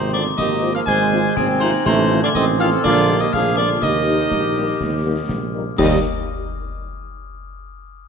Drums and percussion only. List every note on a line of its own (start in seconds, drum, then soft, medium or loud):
0.14 snare medium
0.26 snare medium
0.38 concert bass drum medium
0.38 snare medium
0.75 snare medium
0.87 concert bass drum loud
1.12 snare medium
1.37 concert bass drum loud
1.37 snare medium
1.86 concert bass drum medium
1.86 snare medium
1.86 crash soft
2.10 snare medium
2.22 snare medium
2.35 concert bass drum medium
2.35 snare medium
2.72 snare medium
2.85 concert bass drum loud
3.09 snare medium
3.34 concert bass drum medium
3.34 snare medium
3.82 concert bass drum medium
3.82 snare medium
3.82 crash soft
4.07 snare medium
4.19 snare medium
4.31 concert bass drum medium
4.31 snare medium
4.69 snare medium
4.81 concert bass drum medium
4.81 snare medium
5.29 concert bass drum medium
5.29 snare medium
5.78 concert bass drum loud
5.78 snare loud
5.78 crash medium